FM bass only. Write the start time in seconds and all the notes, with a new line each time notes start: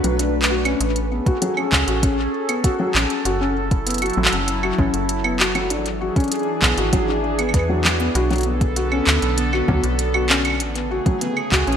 0.04 B1
0.80 A1
1.72 C#2
1.88 A1
2.95 A1
3.25 F#1
4.17 A1
4.33 F#1
4.78 A1
4.94 F#1
5.70 G#1
6.62 B1
6.77 G#1
7.54 E2
8.15 B1
9.07 D2
9.22 B1
9.68 D2
9.84 B1
10.60 A1
11.52 C#2
11.67 A1